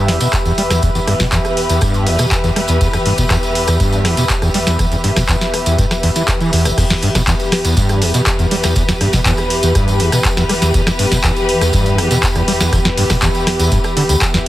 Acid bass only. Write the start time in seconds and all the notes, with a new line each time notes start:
0.08 E2
0.21 B2
0.46 E2
0.58 G3
0.71 E2
0.83 E2
0.95 E2
1.07 G2
1.20 B2
1.32 E2
1.70 E2
1.82 G2
2.07 E2
2.19 B2
2.44 E2
2.56 G3
2.69 E2
2.81 E2
2.93 E2
3.06 G2
3.18 B2
3.30 E2
3.68 E2
3.80 G2
4.05 E2
4.17 B2
4.42 E2
4.55 G3
4.67 E2
4.79 E2
4.92 E2
5.04 G2
5.17 B2
5.29 E2
5.66 E2
5.78 G2
6.03 E2
6.16 E3
6.41 E3
6.53 E2
6.65 E1
6.78 E2
6.90 E2
7.03 G2
7.15 B2
7.27 E2
7.65 E2
7.77 G2
8.02 E2
8.14 B2
8.39 E2
8.51 G3
8.64 E2
8.76 E2
8.89 E2
9.01 G2
9.13 B2
9.26 E2
9.63 E2
9.75 G2
10.00 E2
10.13 B2
10.37 E2
10.49 G3
10.62 E2
10.74 E2
10.87 E2
10.99 G2
11.12 B2
11.24 E2
11.61 E2
11.73 G2
11.98 E2
12.11 B2
12.36 E2
12.48 G3
12.60 E2
12.73 E2
12.85 E2
12.97 G2
13.10 B2
13.22 E2
13.60 E2
13.72 G2
13.97 D3
14.09 D2
14.34 E2